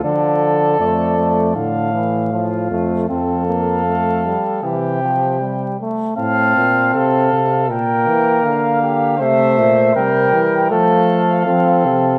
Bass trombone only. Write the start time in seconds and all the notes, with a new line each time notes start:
0.04 D3
0.80 F2
1.56 A2
2.71 F2
3.09 F2
4.64 C3
6.19 A2
6.56 A#2
6.95 C3
7.33 C3
7.70 A#2
8.08 E3
8.45 D3
9.21 C3
9.58 A#2
9.95 C3
10.33 E3
10.71 F3
11.46 F3
11.85 C3